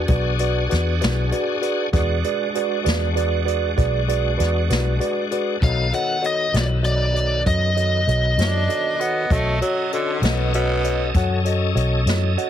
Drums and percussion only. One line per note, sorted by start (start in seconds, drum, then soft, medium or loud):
0.08 kick medium
0.08 closed hi-hat medium
0.39 closed hi-hat medium
0.71 snare soft
0.71 closed hi-hat medium
1.01 snare medium
1.01 closed hi-hat medium
1.32 closed hi-hat medium
1.62 closed hi-hat medium
1.93 kick medium
1.93 closed hi-hat medium
2.24 closed hi-hat soft
2.55 closed hi-hat medium
2.86 snare medium
2.86 closed hi-hat medium
3.17 closed hi-hat soft
3.48 closed hi-hat soft
3.78 kick medium
3.78 closed hi-hat medium
4.09 closed hi-hat medium
4.40 snare soft
4.40 closed hi-hat medium
4.70 snare medium
4.70 closed hi-hat medium
5.01 closed hi-hat medium
5.31 closed hi-hat soft
5.62 kick loud
5.62 closed hi-hat medium
5.93 closed hi-hat soft
6.24 closed hi-hat medium
6.54 snare loud
6.54 closed hi-hat medium
6.84 closed hi-hat medium
7.16 closed hi-hat soft
7.46 kick medium
7.46 closed hi-hat medium
7.77 closed hi-hat medium
8.08 closed hi-hat medium
8.38 snare medium
8.38 closed hi-hat medium
8.70 closed hi-hat medium
9.00 closed hi-hat medium
9.30 kick loud
9.30 closed hi-hat medium
9.62 closed hi-hat medium
9.93 closed hi-hat medium
10.23 snare medium
10.23 closed hi-hat medium
10.54 closed hi-hat medium
10.84 closed hi-hat medium
11.14 kick medium
11.14 closed hi-hat medium
11.45 closed hi-hat medium
11.77 closed hi-hat medium
12.07 snare medium
12.07 closed hi-hat medium
12.38 closed hi-hat soft